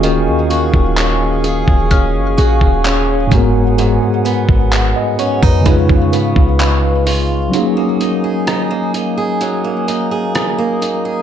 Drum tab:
HH |x-x-x-x-x-x-x-x-|x-x-x-x-x-x-x-o-|x-x-x-x-x-x-x-x-|
CP |----x-------x---|----x-------x---|----------------|
SD |----------------|----------------|----r-------r---|
BD |---o---oo--o--o-|---o---ooo-o----|----------------|